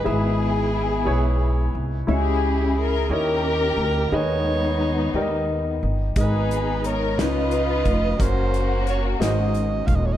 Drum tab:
HH |------|------|------|xxxxxx|
SD |------|------|------|---o--|
BD |------|------|------|o----o|

HH |xxxxxx|
SD |---o--|
BD |o----o|